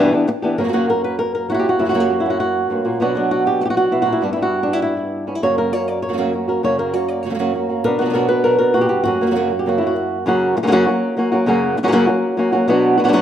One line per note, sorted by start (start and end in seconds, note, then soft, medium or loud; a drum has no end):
0.00 0.12 G2 medium
0.00 0.12 B2 medium
0.00 0.12 E3 medium
0.00 0.13 B3 medium
0.00 0.12 D4 medium
0.00 0.11 G4 medium
0.12 0.27 E3 soft
0.12 0.27 B3 soft
0.12 0.27 D4 soft
0.12 0.27 G4 soft
0.27 muted nylon-string guitar stroke medium
0.42 0.58 E3 soft
0.42 0.58 B3 soft
0.42 0.58 D4 medium
0.42 0.57 G4 medium
0.57 0.72 F#2 soft
0.57 1.78 F#2 medium
0.57 0.63 C#3 medium
0.57 0.60 F#3 medium
0.57 0.73 A#3 soft
0.57 0.63 A#3 soft
0.57 0.64 C#4 medium
0.57 1.51 C#4 soft
0.57 0.64 F#4 soft
0.57 0.73 A#4 medium
0.64 0.67 C#3 soft
0.64 0.67 F#3 soft
0.64 0.68 A#3 soft
0.64 0.68 C#4 soft
0.64 0.68 F#4 soft
0.68 0.72 C#3 medium
0.68 0.72 F#3 soft
0.68 0.72 A#3 soft
0.68 0.73 C#4 medium
0.68 0.73 F#4 medium
0.73 0.88 F#2 soft
0.73 0.88 C#3 medium
0.73 0.88 F#3 medium
0.73 1.77 A#3 soft
0.73 0.88 A#3 medium
0.73 0.87 C#4 medium
0.73 0.89 F#4 medium
0.73 0.86 F#4 medium
0.88 1.18 F#3 soft
0.88 1.18 A#3 soft
0.88 1.18 C#4 soft
0.88 1.18 F#4 soft
0.88 1.04 A#4 medium
1.04 1.18 B4 medium
1.19 1.34 A#4 medium
1.19 muted nylon-string guitar stroke soft
1.35 1.49 A#4 medium
1.49 1.63 F#3 soft
1.49 1.64 A#3 soft
1.49 1.63 C#4 soft
1.49 1.78 E4 medium
1.49 1.53 F#4 medium
1.49 1.62 F#4 soft
1.54 1.68 F#4 medium
1.59 1.69 G4 medium
1.64 1.78 F#3 soft
1.64 1.79 A#3 soft
1.64 1.79 C#4 soft
1.64 1.78 F#4 soft
1.69 1.88 F#4 medium
1.79 1.93 F#2 medium
1.79 2.70 F#2 medium
1.79 1.84 C#3 soft
1.79 1.84 F#3 soft
1.79 1.85 A#3 medium
1.79 1.85 C#4 medium
1.79 2.00 E4 medium
1.79 1.85 F#4 medium
1.85 1.88 C#3 soft
1.85 1.89 F#3 soft
1.85 1.89 A#3 soft
1.85 1.89 C#4 soft
1.85 1.90 F#4 soft
1.89 1.93 C#3 soft
1.89 1.94 F#3 soft
1.89 1.94 A#3 soft
1.89 1.94 C#4 soft
1.89 2.29 F#4 medium
1.89 1.94 F#4 medium
1.94 2.09 F#2 medium
1.94 2.09 C#3 medium
1.94 2.09 F#3 soft
1.94 2.99 A#3 medium
1.94 2.09 A#3 medium
1.94 2.09 C#4 medium
1.94 2.08 F#4 medium
2.00 2.20 G4 medium
2.09 2.39 F#3 soft
2.09 2.39 A#3 soft
2.09 2.39 C#4 soft
2.09 2.39 F#4 soft
2.20 2.60 E4 medium
2.26 2.99 C#4 soft
2.30 2.39 F#4 medium
2.40 3.00 F#4 medium
2.40 muted nylon-string guitar stroke soft
2.70 2.84 G2 medium
2.70 2.85 F#3 soft
2.70 2.85 A#3 soft
2.70 2.85 C#4 soft
2.70 2.84 F#4 soft
2.85 3.00 A#2 medium
2.85 3.00 F#3 soft
2.85 3.00 A#3 soft
2.85 3.00 C#4 soft
2.85 3.00 F#4 soft
3.00 3.90 B2 medium
3.00 3.15 B2 soft
3.00 3.14 F#3 soft
3.00 3.14 F#3 medium
3.00 4.20 B3 soft
3.00 3.15 B3 medium
3.00 3.16 D4 soft
3.00 3.16 D4 medium
3.00 3.30 F#4 medium
3.00 3.16 F#4 medium
3.15 4.20 F#3 medium
3.15 3.45 F#3 soft
3.15 3.46 B3 soft
3.15 3.45 D4 soft
3.15 3.62 D4 medium
3.15 3.44 F#4 soft
3.31 3.46 F#4 medium
3.46 3.60 B3 soft
3.46 3.60 D4 soft
3.46 3.60 F#4 soft
3.46 3.61 G4 medium
3.60 3.65 F#4 medium
3.60 muted nylon-string guitar stroke soft
3.65 3.69 G4 medium
3.70 3.76 F#4 medium
3.75 4.06 B3 soft
3.75 4.05 D4 soft
3.75 4.05 F#4 soft
3.75 4.01 F#4 medium
3.91 4.06 B2 medium
3.91 4.11 E4 medium
4.02 4.21 A#2 medium
4.02 4.22 F#4 medium
4.02 4.21 F#4 soft
4.07 4.20 B3 soft
4.07 4.21 D4 soft
4.12 4.23 E4 medium
4.21 5.40 G2 medium
4.21 4.35 G3 soft
4.21 4.36 B3 medium
4.21 5.41 B3 soft
4.21 4.32 D4 medium
4.21 4.36 E4 medium
4.33 4.66 G3 soft
4.33 5.41 G3 medium
4.33 4.62 E4 medium
4.37 4.66 B3 soft
4.37 4.65 E4 soft
4.42 4.92 F#4 medium
4.63 4.73 D4 medium
4.63 4.81 E4 soft
4.68 4.81 B3 soft
4.73 4.81 E4 medium
4.82 5.27 E4 medium
4.82 muted nylon-string guitar stroke soft
4.97 5.28 B3 soft
4.97 5.26 E4 soft
5.27 5.43 B3 soft
5.27 5.35 C#4 soft
5.27 5.42 E4 soft
5.35 5.43 E4 soft
5.42 5.72 F#2 soft
5.42 6.62 F#2 medium
5.42 5.72 C#3 medium
5.42 5.72 F#3 medium
5.42 5.73 A#3 medium
5.42 5.72 C#4 medium
5.42 5.71 F#4 medium
5.42 5.58 C#5 medium
5.58 6.62 A#3 medium
5.58 5.73 A#4 medium
5.73 6.02 F#3 soft
5.73 6.02 A#3 soft
5.73 6.02 C#4 soft
5.73 6.02 F#4 soft
5.73 5.88 C#5 medium
5.88 6.02 D5 medium
6.02 6.18 C#5 medium
6.02 muted nylon-string guitar stroke soft
6.09 6.12 C#3 soft
6.09 6.12 F#3 soft
6.09 6.12 A#3 soft
6.09 6.13 C#4 soft
6.09 6.13 F#4 soft
6.13 6.17 C#3 soft
6.13 6.17 F#3 soft
6.13 6.17 A#3 medium
6.13 6.17 C#4 medium
6.13 6.18 F#4 soft
6.18 6.32 F#2 medium
6.18 6.32 C#3 medium
6.18 6.32 F#3 medium
6.18 6.32 A#3 medium
6.18 6.33 C#4 medium
6.18 7.39 F#4 soft
6.18 6.33 F#4 medium
6.18 6.48 A#4 soft
6.33 6.47 F#3 soft
6.33 6.48 A#3 soft
6.33 6.47 C#4 soft
6.33 6.46 F#4 soft
6.48 6.63 F#3 soft
6.48 6.63 A#3 soft
6.48 6.63 C#4 soft
6.48 6.62 F#4 soft
6.48 6.62 A#4 soft
6.63 6.93 F#2 soft
6.63 7.84 F#2 medium
6.63 6.93 C#3 medium
6.63 6.93 F#3 medium
6.63 6.93 A#3 medium
6.63 6.93 C#4 soft
6.63 6.92 F#4 medium
6.63 6.79 C#5 medium
6.78 7.83 A#3 medium
6.78 6.94 A#4 medium
6.93 7.23 F#3 soft
6.93 7.23 A#3 soft
6.93 7.23 C#4 soft
6.93 7.23 F#4 soft
6.93 7.08 C#5 medium
7.08 7.23 D5 medium
7.23 7.28 C#3 soft
7.23 7.30 C#4 soft
7.23 7.30 F#4 soft
7.23 7.38 C#5 medium
7.23 muted nylon-string guitar stroke soft
7.30 7.33 C#3 soft
7.30 7.33 F#3 soft
7.30 7.34 A#3 medium
7.30 7.34 C#4 soft
7.30 7.34 F#4 medium
7.34 7.38 C#3 medium
7.34 7.38 F#3 medium
7.34 7.38 A#3 medium
7.34 7.39 C#4 medium
7.34 7.39 F#4 medium
7.39 7.53 F#2 medium
7.39 7.54 C#3 medium
7.39 7.53 F#3 medium
7.39 7.54 A#3 medium
7.39 7.54 C#4 medium
7.39 7.84 F#4 soft
7.39 7.54 F#4 medium
7.39 7.83 A#4 soft
7.55 7.69 A#3 soft
7.55 7.69 C#4 soft
7.69 7.85 F#3 soft
7.69 7.84 A#3 soft
7.69 7.84 C#4 soft
7.69 7.84 F#4 soft
7.84 9.05 B2 medium
7.84 7.98 B3 soft
7.84 9.04 D4 soft
7.84 8.12 A#4 medium
7.84 muted nylon-string guitar stroke medium
7.99 8.04 F#3 soft
7.99 9.04 B3 medium
7.99 8.04 B3 soft
7.99 8.05 D4 soft
7.99 8.28 F#4 medium
7.99 8.05 F#4 soft
8.05 8.08 F#3 soft
8.05 8.09 B3 soft
8.05 8.09 D4 medium
8.05 8.10 F#4 soft
8.10 8.13 F#3 medium
8.10 8.14 B3 medium
8.10 8.14 D4 medium
8.10 8.14 F#4 medium
8.10 8.43 A#4 medium
8.14 8.29 B2 medium
8.14 8.29 F#3 medium
8.14 8.29 B3 medium
8.14 8.29 D4 medium
8.14 8.28 F#4 medium
8.29 8.44 B3 soft
8.29 8.44 D4 soft
8.29 8.44 F#4 soft
8.29 8.74 B4 medium
8.44 8.59 B2 medium
8.44 8.59 F#3 medium
8.44 8.59 B3 medium
8.44 8.59 D4 medium
8.44 8.58 F#4 medium
8.44 8.57 A#4 medium
8.59 8.74 B3 soft
8.59 8.74 D4 soft
8.59 8.74 F#4 soft
8.59 8.81 A#4 medium
8.74 8.90 A#2 medium
8.74 9.02 F#4 medium
8.74 muted nylon-string guitar stroke soft
8.81 8.88 G4 medium
8.89 9.06 G2 medium
8.89 9.05 G4 medium
9.04 10.25 F#2 medium
9.04 9.20 A#3 soft
9.04 9.59 C#4 soft
9.04 9.68 F#4 medium
9.04 muted nylon-string guitar stroke soft
9.21 9.25 C#3 soft
9.21 9.26 F#3 soft
9.21 10.25 A#3 medium
9.21 9.26 A#3 soft
9.21 9.26 C#4 soft
9.21 9.26 F#4 soft
9.26 9.30 C#3 soft
9.26 9.30 F#3 soft
9.26 9.30 A#3 soft
9.26 9.31 C#4 medium
9.26 9.31 F#4 soft
9.31 9.34 C#3 soft
9.31 9.35 F#3 medium
9.31 9.35 A#3 medium
9.31 9.35 C#4 medium
9.31 9.35 F#4 medium
9.35 9.50 F#2 medium
9.35 9.50 C#3 medium
9.35 9.50 F#3 medium
9.35 9.50 A#3 medium
9.35 9.50 C#4 medium
9.35 9.49 F#4 medium
9.50 9.65 F#3 soft
9.50 9.66 A#3 soft
9.50 9.65 C#4 soft
9.50 9.65 F#4 soft
9.59 9.69 G4 medium
9.65 9.80 F#2 medium
9.65 9.81 C#3 medium
9.65 9.81 F#3 medium
9.65 9.81 A#3 medium
9.65 9.80 C#4 medium
9.65 9.80 F#4 medium
9.65 9.85 F#4 medium
9.78 9.95 C#4 soft
9.78 10.17 E4 medium
9.78 9.95 F#4 soft
9.82 9.95 F#3 soft
9.82 9.95 A#3 soft
9.87 10.26 F#4 medium
9.96 muted nylon-string guitar stroke soft
10.26 10.55 F#2 medium
10.26 10.56 C#3 medium
10.26 10.56 F#3 medium
10.26 10.56 A#3 medium
10.26 10.56 C#4 medium
10.26 10.56 F#4 medium
10.57 muted nylon-string guitar stroke medium
10.63 10.66 C#3 medium
10.63 10.66 F#3 medium
10.63 10.67 A#3 medium
10.63 10.67 C#4 medium
10.63 10.67 F#4 medium
10.67 10.71 C#3 medium
10.67 10.71 F#3 medium
10.67 10.71 A#3 medium
10.67 10.71 C#4 medium
10.67 10.72 F#4 medium
10.72 10.86 F#2 medium
10.72 10.86 C#3 medium
10.72 10.86 F#3 medium
10.72 10.87 A#3 medium
10.72 10.86 C#4 medium
10.72 10.85 F#4 medium
10.87 11.15 F#3 soft
10.87 11.16 A#3 soft
10.87 11.17 C#4 medium
10.87 11.16 F#4 medium
11.17 11.31 F#3 medium
11.17 11.32 A#3 medium
11.17 11.31 C#4 medium
11.17 11.31 F#4 medium
11.32 11.46 F#3 medium
11.32 11.47 A#3 medium
11.32 11.47 C#4 medium
11.32 11.46 F#4 medium
11.46 11.76 F#2 medium
11.46 11.76 C#3 medium
11.46 11.77 F#3 medium
11.46 11.77 A#3 medium
11.46 11.77 C#4 medium
11.46 11.77 F#4 medium
11.77 muted nylon-string guitar stroke medium
11.83 11.86 C#3 medium
11.83 11.87 F#3 medium
11.83 11.87 A#3 medium
11.83 11.88 C#4 medium
11.83 11.88 F#4 medium
11.88 11.91 C#3 medium
11.88 11.91 F#3 medium
11.88 11.92 A#3 medium
11.88 11.92 C#4 medium
11.88 11.92 F#4 medium
11.92 12.07 F#2 medium
11.92 12.07 C#3 loud
11.92 12.07 F#3 loud
11.92 12.07 A#3 loud
11.92 12.07 C#4 loud
11.92 12.06 F#4 loud
12.07 12.36 F#3 soft
12.07 12.37 A#3 soft
12.07 12.37 C#4 medium
12.07 12.37 F#4 medium
12.37 12.52 F#3 medium
12.37 12.52 A#3 medium
12.37 12.52 C#4 medium
12.37 12.51 F#4 medium
12.52 12.67 F#3 medium
12.52 12.68 A#3 medium
12.52 12.67 C#4 medium
12.52 12.67 F#4 medium
12.68 12.97 B2 medium
12.68 12.98 F#3 medium
12.68 12.98 B3 medium
12.68 12.98 D4 medium
12.68 12.96 F#4 medium
12.98 13.03 F#3 medium
12.98 13.02 B3 medium
12.98 13.01 D4 medium
12.98 13.00 F#4 medium
13.04 13.07 F#3 medium
13.04 13.08 B3 medium
13.04 13.08 D4 medium
13.04 13.08 F#4 medium
13.08 13.12 F#3 medium
13.08 13.12 B3 medium
13.08 13.12 D4 medium
13.08 13.13 F#4 medium
13.13 13.22 B2 medium
13.13 13.22 F#3 loud
13.13 13.22 B3 loud
13.13 13.22 D4 medium
13.13 13.22 F#4 medium